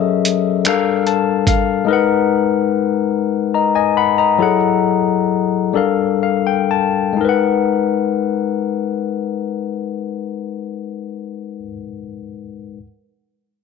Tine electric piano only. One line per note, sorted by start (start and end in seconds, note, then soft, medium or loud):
0.00 0.65 F#3 medium
0.00 0.65 C#4 medium
0.00 0.66 G#4 medium
0.00 0.65 A4 medium
0.00 0.67 A#4 soft
0.00 0.67 D#5 soft
0.00 0.67 E5 medium
0.65 1.87 G3 medium
0.65 1.88 D4 medium
0.65 1.88 A4 medium
0.65 1.87 A#4 medium
0.65 1.47 F5 medium
1.07 1.44 A5 soft
1.48 1.85 F5 medium
1.85 4.34 G#3 medium
1.85 4.35 D#4 medium
1.85 4.36 A#4 medium
1.91 4.37 B4 medium
1.91 3.53 F#5 medium
3.54 3.74 D#5 soft
3.54 3.74 A#5 soft
3.75 3.95 D#5 soft
3.75 3.95 G#5 medium
3.97 4.17 F#5 soft
3.97 4.17 B5 medium
4.18 4.60 D#5 soft
4.18 4.59 A#5 medium
4.38 5.74 F#3 medium
4.38 5.75 E4 medium
4.38 5.75 G#4 medium
4.38 5.74 A4 medium
4.38 5.76 F#5 medium
5.73 7.20 G3 medium
5.73 7.21 D4 medium
5.73 7.21 A4 medium
5.73 7.20 A#4 medium
5.73 6.22 F5 medium
6.23 6.45 F5 soft
6.47 6.69 G5 medium
6.71 7.18 A5 medium
7.13 11.58 G#3 medium
7.17 11.62 D#4 medium
7.17 11.66 A#4 medium
7.25 11.70 B4 medium
7.29 11.74 F#5 medium